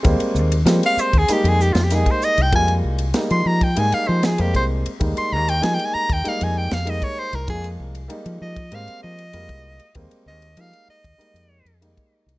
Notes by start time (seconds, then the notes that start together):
0.03 D#2 G3 G#3 A#3 C4, kick, hi-hat pedal, ride
0.20 ride
0.35 D#2, hi-hat pedal
0.52 ride
0.66 F3 G3 G#3 A#3 C4, snare, hi-hat pedal, ride
0.83 F5, ride
0.97 C5, muted fingered electric bass stroke, hi-hat pedal
1.13 D#2, kick, ride
1.18 G#4
1.28 G3 G#3 A#3 D#4, muted fingered electric bass stroke, hi-hat pedal, ride
1.33 G4
1.44 F2, ride
1.49 G#4
1.60 G4, hi-hat pedal
1.73 F2 F4, snare, ride
1.84 G4
1.90 G3 G#3 A#3 D#4, snare, hi-hat pedal, ride
1.95 G#4
2.06 kick, ride
2.11 C5
2.22 D#5, hi-hat pedal
2.38 C2, ride
2.42 G5
2.52 F2 G3 G#3 A#3 F4 G#5, kick, ride
2.68 ride
2.84 C2
2.99 ride
3.14 G3 G#3 A#3 D#4, snare, ride
3.30 F3 C6, ride
3.46 F3 A#5
3.61 G5, kick, ride
3.75 G#2 G3 G#3 A#3 D#4 G#5, ride
3.92 F5, muted fingered electric bass stroke, ride
4.07 F3 C5
4.23 G#4, snare, ride
4.38 F2 G3 G#3 A#3 C4 G4, ride
4.55 C2 C5, kick, ride
4.86 ride
5.00 D#2 G3 G#3 A#3 D#4, kick, ride
5.17 C6, muted fingered electric bass stroke, ride
5.32 D#2 A#5
5.49 G5, ride
5.61 F3 G3 G#3 A#3 D#4 G#5, snare, ride
5.74 G5
5.79 ride
5.86 G#5
5.94 A#5, muted fingered electric bass stroke
6.10 D#2 G5, kick, ride
6.24 G3 G#3 A#3 D#4, muted fingered electric bass stroke, ride
6.28 F5
6.41 F2 G#5, ride
6.58 G5
6.71 F2 F5, snare, ride
6.85 G3 G#3 A#3 D#4, ride
6.90 D#5
7.02 C#5, kick, ride
7.19 C5
7.33 C2 A#4, ride
7.48 F2 F3 G#3 A#3 F4 G#4, kick, ride
7.64 ride
7.80 C2
7.95 ride
8.08 G3 G#3 A#3 D#4, ride
8.26 F3, ride
8.42 F3 D#5
8.56 kick, ride
8.72 G#2 G3 G#3 A#3 C4 F5, ride
8.88 muted fingered electric bass stroke, ride
9.03 F3 D#5
9.18 ride
9.33 F2 G3 G#3 A#3 F4, ride
9.49 C2, kick, ride
9.79 muted fingered electric bass stroke, ride
9.95 D#2 G3 G#3 A#3 C4, kick, ride
10.11 ride
10.26 D#2 D#5
10.42 ride
10.57 F3 G3 G#3 A#3 D#4 F5, ride
10.73 ride
10.88 D#5, muted fingered electric bass stroke
11.04 D#2, kick, ride
11.18 G3 G#3 A#3 D#4, muted fingered electric bass stroke, ride
11.34 F2, ride
11.65 F2, ride
11.81 G3 G#3 A#3 D#4, ride
11.97 kick, ride
12.26 C2, ride